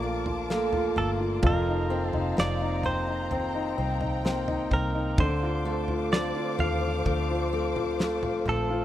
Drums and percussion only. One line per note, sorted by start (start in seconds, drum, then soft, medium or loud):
0.26 floor tom medium
0.50 snare medium
0.73 floor tom medium
0.96 floor tom medium
1.43 kick loud
1.43 floor tom loud
2.13 floor tom medium
2.38 snare loud
2.83 floor tom medium
3.31 floor tom medium
4.01 floor tom medium
4.26 snare medium
4.48 floor tom medium
4.71 kick medium
4.71 floor tom medium
5.18 kick loud
5.18 floor tom loud
5.88 floor tom medium
6.13 snare loud
6.59 floor tom medium
7.06 kick medium
7.06 floor tom medium
7.76 floor tom medium
8.00 snare medium
8.23 floor tom medium
8.46 floor tom medium